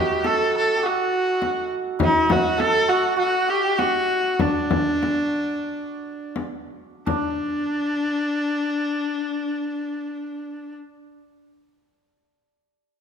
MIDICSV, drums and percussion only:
0, 0, Header, 1, 2, 480
1, 0, Start_track
1, 0, Tempo, 587659
1, 1631, Time_signature, 4, 2, 24, 8
1, 3084, Tempo, 634249
1, 4524, Tempo, 696056
1, 5484, Tempo, 727273
1, 9399, End_track
2, 0, Start_track
2, 0, Title_t, "Frame drum"
2, 200, Note_on_c, 9, 64, 71
2, 281, Note_off_c, 9, 64, 0
2, 1159, Note_on_c, 9, 64, 66
2, 1240, Note_off_c, 9, 64, 0
2, 1633, Note_on_c, 9, 64, 101
2, 1714, Note_off_c, 9, 64, 0
2, 1877, Note_on_c, 9, 64, 98
2, 1959, Note_off_c, 9, 64, 0
2, 2121, Note_on_c, 9, 64, 67
2, 2203, Note_off_c, 9, 64, 0
2, 3093, Note_on_c, 9, 64, 70
2, 3169, Note_off_c, 9, 64, 0
2, 3552, Note_on_c, 9, 64, 92
2, 3628, Note_off_c, 9, 64, 0
2, 3788, Note_on_c, 9, 64, 88
2, 3864, Note_off_c, 9, 64, 0
2, 4031, Note_on_c, 9, 64, 66
2, 4107, Note_off_c, 9, 64, 0
2, 4992, Note_on_c, 9, 64, 63
2, 5061, Note_off_c, 9, 64, 0
2, 5484, Note_on_c, 9, 64, 85
2, 5550, Note_off_c, 9, 64, 0
2, 9399, End_track
0, 0, End_of_file